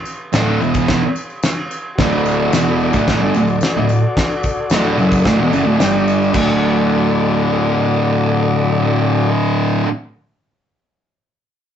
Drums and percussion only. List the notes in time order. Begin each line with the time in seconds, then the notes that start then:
0.05 tambourine
0.33 snare, tambourine, crash
0.61 tambourine
0.74 kick, tambourine
0.88 kick, snare, crash
1.16 tambourine
1.30 tambourine
1.43 snare, tambourine, crash
1.71 tambourine
1.98 kick, snare, crash
2.12 tambourine
2.26 tambourine
2.53 snare, tambourine, crash
2.80 tambourine
2.93 kick, tambourine
3.08 kick, snare, crash
3.34 tambourine
3.48 tambourine
3.61 snare, tambourine, crash
3.89 tambourine
4.17 kick, snare, tambourine, crash
4.30 tambourine
4.43 kick, tambourine
4.70 snare, tambourine, crash
4.99 tambourine
5.12 kick, tambourine
5.25 kick, snare, crash
5.53 tambourine
5.80 snare, tambourine, crash
6.08 tambourine
6.22 tambourine
6.34 kick, crash, tambourine